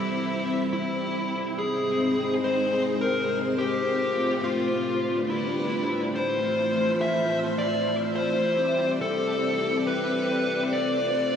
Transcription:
0, 0, Header, 1, 3, 480
1, 0, Start_track
1, 0, Key_signature, 0, "major"
1, 0, Tempo, 571429
1, 1331, Time_signature, 4, 2, 24, 8
1, 9544, End_track
2, 0, Start_track
2, 0, Title_t, "Lead electric guitar"
2, 0, Program_c, 0, 29
2, 0, Note_on_c, 0, 64, 91
2, 515, Note_off_c, 0, 64, 0
2, 612, Note_on_c, 0, 64, 89
2, 1236, Note_off_c, 0, 64, 0
2, 1331, Note_on_c, 0, 68, 96
2, 1955, Note_off_c, 0, 68, 0
2, 2051, Note_on_c, 0, 72, 82
2, 2355, Note_off_c, 0, 72, 0
2, 2531, Note_on_c, 0, 70, 85
2, 2834, Note_off_c, 0, 70, 0
2, 3011, Note_on_c, 0, 67, 95
2, 3635, Note_off_c, 0, 67, 0
2, 3730, Note_on_c, 0, 65, 95
2, 4355, Note_off_c, 0, 65, 0
2, 4450, Note_on_c, 0, 64, 89
2, 5075, Note_off_c, 0, 64, 0
2, 5170, Note_on_c, 0, 72, 100
2, 5795, Note_off_c, 0, 72, 0
2, 5891, Note_on_c, 0, 76, 87
2, 6194, Note_off_c, 0, 76, 0
2, 6371, Note_on_c, 0, 74, 86
2, 6674, Note_off_c, 0, 74, 0
2, 6851, Note_on_c, 0, 72, 97
2, 7475, Note_off_c, 0, 72, 0
2, 7571, Note_on_c, 0, 69, 97
2, 8195, Note_off_c, 0, 69, 0
2, 8292, Note_on_c, 0, 71, 96
2, 8916, Note_off_c, 0, 71, 0
2, 9012, Note_on_c, 0, 74, 100
2, 9544, Note_off_c, 0, 74, 0
2, 9544, End_track
3, 0, Start_track
3, 0, Title_t, "String machine"
3, 0, Program_c, 1, 50
3, 0, Note_on_c, 1, 55, 83
3, 0, Note_on_c, 1, 60, 75
3, 0, Note_on_c, 1, 64, 78
3, 0, Note_on_c, 1, 76, 92
3, 1297, Note_off_c, 1, 60, 0
3, 1298, Note_off_c, 1, 55, 0
3, 1298, Note_off_c, 1, 64, 0
3, 1298, Note_off_c, 1, 76, 0
3, 1332, Note_on_c, 1, 56, 85
3, 1332, Note_on_c, 1, 60, 78
3, 1332, Note_on_c, 1, 63, 77
3, 1332, Note_on_c, 1, 72, 90
3, 3232, Note_off_c, 1, 56, 0
3, 3232, Note_off_c, 1, 60, 0
3, 3232, Note_off_c, 1, 63, 0
3, 3252, Note_on_c, 1, 57, 81
3, 3252, Note_on_c, 1, 60, 71
3, 3252, Note_on_c, 1, 65, 71
3, 4183, Note_off_c, 1, 72, 0
3, 4202, Note_off_c, 1, 57, 0
3, 4202, Note_off_c, 1, 60, 0
3, 4202, Note_off_c, 1, 65, 0
3, 4212, Note_on_c, 1, 57, 81
3, 4212, Note_on_c, 1, 62, 74
3, 4212, Note_on_c, 1, 67, 75
3, 4212, Note_on_c, 1, 71, 89
3, 5162, Note_off_c, 1, 57, 0
3, 5162, Note_off_c, 1, 62, 0
3, 5162, Note_off_c, 1, 67, 0
3, 5162, Note_off_c, 1, 71, 0
3, 5172, Note_on_c, 1, 57, 87
3, 5172, Note_on_c, 1, 64, 79
3, 5172, Note_on_c, 1, 65, 77
3, 5172, Note_on_c, 1, 72, 92
3, 7072, Note_off_c, 1, 57, 0
3, 7072, Note_off_c, 1, 65, 0
3, 7072, Note_off_c, 1, 72, 0
3, 7091, Note_on_c, 1, 67, 80
3, 7092, Note_on_c, 1, 60, 87
3, 7092, Note_on_c, 1, 74, 94
3, 8978, Note_off_c, 1, 64, 0
3, 8992, Note_off_c, 1, 67, 0
3, 9012, Note_on_c, 1, 65, 81
3, 9012, Note_on_c, 1, 69, 78
3, 9544, Note_off_c, 1, 60, 0
3, 9544, Note_off_c, 1, 65, 0
3, 9544, Note_off_c, 1, 69, 0
3, 9544, Note_off_c, 1, 74, 0
3, 9544, End_track
0, 0, End_of_file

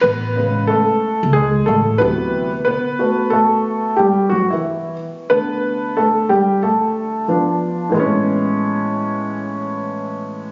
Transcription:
0, 0, Header, 1, 3, 480
1, 0, Start_track
1, 0, Key_signature, 3, "major"
1, 0, Tempo, 659341
1, 23, Time_signature, 4, 2, 24, 8
1, 7657, End_track
2, 0, Start_track
2, 0, Title_t, "Upright piano"
2, 0, Program_c, 0, 0
2, 10, Note_on_c, 0, 71, 98
2, 27, Note_on_c, 0, 59, 77
2, 259, Note_off_c, 0, 59, 0
2, 261, Note_on_c, 0, 49, 52
2, 268, Note_on_c, 0, 56, 45
2, 270, Note_on_c, 0, 59, 57
2, 491, Note_on_c, 0, 69, 92
2, 508, Note_on_c, 0, 57, 64
2, 511, Note_off_c, 0, 71, 0
2, 605, Note_off_c, 0, 49, 0
2, 609, Note_off_c, 0, 56, 0
2, 610, Note_off_c, 0, 59, 0
2, 956, Note_off_c, 0, 57, 0
2, 969, Note_on_c, 0, 68, 95
2, 991, Note_off_c, 0, 69, 0
2, 991, Note_on_c, 0, 56, 72
2, 1198, Note_off_c, 0, 68, 0
2, 1208, Note_on_c, 0, 69, 85
2, 1210, Note_off_c, 0, 56, 0
2, 1230, Note_on_c, 0, 57, 62
2, 1444, Note_on_c, 0, 71, 99
2, 1450, Note_off_c, 0, 57, 0
2, 1457, Note_on_c, 0, 48, 57
2, 1463, Note_off_c, 0, 69, 0
2, 1464, Note_on_c, 0, 52, 53
2, 1465, Note_on_c, 0, 54, 51
2, 1468, Note_on_c, 0, 59, 79
2, 1803, Note_off_c, 0, 48, 0
2, 1807, Note_off_c, 0, 52, 0
2, 1808, Note_off_c, 0, 54, 0
2, 1817, Note_off_c, 0, 71, 0
2, 1831, Note_off_c, 0, 59, 0
2, 1927, Note_on_c, 0, 71, 94
2, 1950, Note_on_c, 0, 59, 76
2, 2177, Note_on_c, 0, 66, 45
2, 2178, Note_off_c, 0, 59, 0
2, 2182, Note_on_c, 0, 57, 48
2, 2189, Note_on_c, 0, 59, 59
2, 2404, Note_on_c, 0, 69, 81
2, 2416, Note_off_c, 0, 57, 0
2, 2427, Note_on_c, 0, 57, 65
2, 2429, Note_off_c, 0, 71, 0
2, 2876, Note_off_c, 0, 57, 0
2, 2887, Note_on_c, 0, 67, 76
2, 2907, Note_on_c, 0, 55, 65
2, 2908, Note_off_c, 0, 69, 0
2, 3116, Note_off_c, 0, 66, 0
2, 3127, Note_on_c, 0, 66, 76
2, 3128, Note_off_c, 0, 55, 0
2, 3142, Note_off_c, 0, 67, 0
2, 3145, Note_on_c, 0, 54, 56
2, 3276, Note_off_c, 0, 66, 0
2, 3279, Note_on_c, 0, 64, 62
2, 3286, Note_off_c, 0, 54, 0
2, 3300, Note_on_c, 0, 52, 50
2, 3591, Note_off_c, 0, 64, 0
2, 3602, Note_off_c, 0, 52, 0
2, 3855, Note_off_c, 0, 59, 0
2, 3857, Note_on_c, 0, 71, 98
2, 3859, Note_on_c, 0, 50, 51
2, 3862, Note_on_c, 0, 57, 44
2, 3866, Note_on_c, 0, 59, 74
2, 4315, Note_off_c, 0, 59, 0
2, 4336, Note_off_c, 0, 57, 0
2, 4344, Note_on_c, 0, 69, 77
2, 4347, Note_on_c, 0, 57, 64
2, 4354, Note_off_c, 0, 71, 0
2, 4568, Note_off_c, 0, 57, 0
2, 4581, Note_on_c, 0, 67, 82
2, 4585, Note_on_c, 0, 55, 64
2, 4590, Note_off_c, 0, 69, 0
2, 4807, Note_off_c, 0, 55, 0
2, 4824, Note_on_c, 0, 69, 73
2, 4829, Note_off_c, 0, 67, 0
2, 4830, Note_on_c, 0, 57, 59
2, 5272, Note_off_c, 0, 50, 0
2, 5274, Note_off_c, 0, 69, 0
2, 5277, Note_off_c, 0, 57, 0
2, 5299, Note_on_c, 0, 53, 51
2, 5303, Note_on_c, 0, 59, 47
2, 5309, Note_on_c, 0, 62, 56
2, 5748, Note_on_c, 0, 45, 64
2, 5757, Note_off_c, 0, 53, 0
2, 5759, Note_off_c, 0, 59, 0
2, 5762, Note_off_c, 0, 62, 0
2, 5766, Note_on_c, 0, 52, 68
2, 5784, Note_on_c, 0, 56, 65
2, 5801, Note_on_c, 0, 59, 62
2, 5821, Note_on_c, 0, 61, 77
2, 7657, Note_off_c, 0, 45, 0
2, 7657, Note_off_c, 0, 52, 0
2, 7657, Note_off_c, 0, 56, 0
2, 7657, Note_off_c, 0, 59, 0
2, 7657, Note_off_c, 0, 61, 0
2, 7657, End_track
3, 0, Start_track
3, 0, Title_t, "Upright bass"
3, 0, Program_c, 1, 32
3, 25, Note_on_c, 1, 33, 81
3, 475, Note_off_c, 1, 33, 0
3, 895, Note_on_c, 1, 37, 83
3, 1194, Note_off_c, 1, 37, 0
3, 1223, Note_on_c, 1, 33, 78
3, 1439, Note_off_c, 1, 33, 0
3, 1466, Note_on_c, 1, 38, 86
3, 1915, Note_off_c, 1, 38, 0
3, 7657, End_track
0, 0, End_of_file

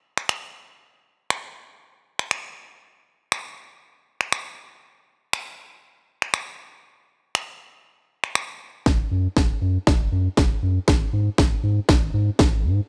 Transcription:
0, 0, Header, 1, 3, 480
1, 0, Start_track
1, 0, Tempo, 504202
1, 759, Time_signature, 4, 2, 24, 8
1, 12267, End_track
2, 0, Start_track
2, 0, Title_t, "Sub bass"
2, 0, Program_c, 0, 38
2, 8436, Note_on_c, 0, 30, 104
2, 8593, Note_off_c, 0, 30, 0
2, 8676, Note_on_c, 0, 42, 96
2, 8833, Note_off_c, 0, 42, 0
2, 8917, Note_on_c, 0, 30, 97
2, 9074, Note_off_c, 0, 30, 0
2, 9155, Note_on_c, 0, 42, 96
2, 9312, Note_off_c, 0, 42, 0
2, 9397, Note_on_c, 0, 30, 111
2, 9480, Note_off_c, 0, 30, 0
2, 9522, Note_on_c, 0, 30, 97
2, 9597, Note_off_c, 0, 30, 0
2, 9635, Note_on_c, 0, 42, 93
2, 9792, Note_off_c, 0, 42, 0
2, 9879, Note_on_c, 0, 30, 96
2, 10035, Note_off_c, 0, 30, 0
2, 10117, Note_on_c, 0, 42, 94
2, 10274, Note_off_c, 0, 42, 0
2, 10357, Note_on_c, 0, 32, 106
2, 10513, Note_off_c, 0, 32, 0
2, 10597, Note_on_c, 0, 44, 99
2, 10753, Note_off_c, 0, 44, 0
2, 10837, Note_on_c, 0, 32, 103
2, 10994, Note_off_c, 0, 32, 0
2, 11076, Note_on_c, 0, 44, 110
2, 11233, Note_off_c, 0, 44, 0
2, 11317, Note_on_c, 0, 32, 115
2, 11400, Note_off_c, 0, 32, 0
2, 11444, Note_on_c, 0, 32, 97
2, 11518, Note_off_c, 0, 32, 0
2, 11556, Note_on_c, 0, 44, 109
2, 11713, Note_off_c, 0, 44, 0
2, 11800, Note_on_c, 0, 32, 105
2, 12035, Note_on_c, 0, 44, 105
2, 12049, Note_off_c, 0, 32, 0
2, 12192, Note_off_c, 0, 44, 0
2, 12267, End_track
3, 0, Start_track
3, 0, Title_t, "Drums"
3, 167, Note_on_c, 9, 26, 56
3, 262, Note_off_c, 9, 26, 0
3, 278, Note_on_c, 9, 26, 96
3, 374, Note_off_c, 9, 26, 0
3, 1242, Note_on_c, 9, 26, 95
3, 1337, Note_off_c, 9, 26, 0
3, 2088, Note_on_c, 9, 26, 58
3, 2184, Note_off_c, 9, 26, 0
3, 2200, Note_on_c, 9, 26, 91
3, 2296, Note_off_c, 9, 26, 0
3, 3161, Note_on_c, 9, 26, 94
3, 3256, Note_off_c, 9, 26, 0
3, 4005, Note_on_c, 9, 26, 60
3, 4101, Note_off_c, 9, 26, 0
3, 4117, Note_on_c, 9, 26, 93
3, 4212, Note_off_c, 9, 26, 0
3, 5078, Note_on_c, 9, 26, 89
3, 5173, Note_off_c, 9, 26, 0
3, 5923, Note_on_c, 9, 26, 59
3, 6018, Note_off_c, 9, 26, 0
3, 6033, Note_on_c, 9, 26, 95
3, 6128, Note_off_c, 9, 26, 0
3, 6998, Note_on_c, 9, 26, 87
3, 7093, Note_off_c, 9, 26, 0
3, 7842, Note_on_c, 9, 26, 58
3, 7937, Note_off_c, 9, 26, 0
3, 7953, Note_on_c, 9, 26, 96
3, 8048, Note_off_c, 9, 26, 0
3, 8436, Note_on_c, 9, 36, 109
3, 8436, Note_on_c, 9, 38, 50
3, 8531, Note_off_c, 9, 36, 0
3, 8531, Note_off_c, 9, 38, 0
3, 8916, Note_on_c, 9, 36, 98
3, 8916, Note_on_c, 9, 38, 52
3, 9011, Note_off_c, 9, 38, 0
3, 9012, Note_off_c, 9, 36, 0
3, 9396, Note_on_c, 9, 38, 55
3, 9397, Note_on_c, 9, 36, 113
3, 9492, Note_off_c, 9, 36, 0
3, 9492, Note_off_c, 9, 38, 0
3, 9875, Note_on_c, 9, 38, 55
3, 9879, Note_on_c, 9, 36, 100
3, 9970, Note_off_c, 9, 38, 0
3, 9975, Note_off_c, 9, 36, 0
3, 10355, Note_on_c, 9, 38, 57
3, 10357, Note_on_c, 9, 36, 107
3, 10451, Note_off_c, 9, 38, 0
3, 10452, Note_off_c, 9, 36, 0
3, 10836, Note_on_c, 9, 38, 60
3, 10837, Note_on_c, 9, 36, 104
3, 10931, Note_off_c, 9, 38, 0
3, 10932, Note_off_c, 9, 36, 0
3, 11316, Note_on_c, 9, 38, 67
3, 11318, Note_on_c, 9, 36, 120
3, 11411, Note_off_c, 9, 38, 0
3, 11413, Note_off_c, 9, 36, 0
3, 11796, Note_on_c, 9, 38, 64
3, 11800, Note_on_c, 9, 36, 105
3, 11891, Note_off_c, 9, 38, 0
3, 11895, Note_off_c, 9, 36, 0
3, 12267, End_track
0, 0, End_of_file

